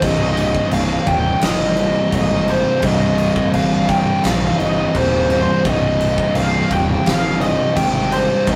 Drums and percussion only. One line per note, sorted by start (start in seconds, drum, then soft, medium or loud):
0.02 kick loud
0.02 crash medium
0.37 crash medium
0.55 kick medium
0.71 snare soft
0.71 crash medium
1.07 kick medium
1.07 crash medium
1.41 snare loud
1.41 crash medium
1.77 crash medium
2.12 kick medium
2.12 crash medium
2.48 crash medium
2.82 kick loud
2.82 crash medium
3.18 crash medium
3.36 kick medium
3.54 snare soft
3.54 crash medium
3.89 kick medium
3.89 crash medium
4.24 snare loud
4.24 crash medium
4.60 crash medium
4.95 kick medium
4.95 crash medium
5.30 crash medium
5.65 kick loud
5.65 crash medium
6.01 crash medium
6.18 kick medium
6.35 snare soft
6.35 crash medium
6.71 kick medium
6.71 crash medium
7.06 snare loud
7.06 crash medium
7.41 crash medium
7.76 kick medium
7.76 crash medium
8.12 crash medium
8.47 kick loud
8.47 crash medium